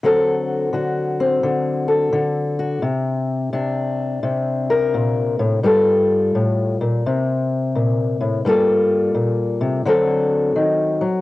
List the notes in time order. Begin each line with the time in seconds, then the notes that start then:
0.03 D3 F#3 C4 F#4 A4
0.73 D3 F#4
1.20 C4
1.43 D3
1.88 A4
2.13 D3
2.59 F#4
2.82 C3
3.53 C3 D4
4.23 C3
4.70 A#4
4.94 A#2
5.39 A2
5.63 G2 G3 F4 A4
6.35 A2
6.81 A#2
7.06 C3
7.75 A#2
8.21 A2
8.45 G2 G3 A#3 F4 A4
9.15 A#2
9.61 C3
9.86 D3 F#3 C4 F#4 A4
10.56 D#3
11.01 F#3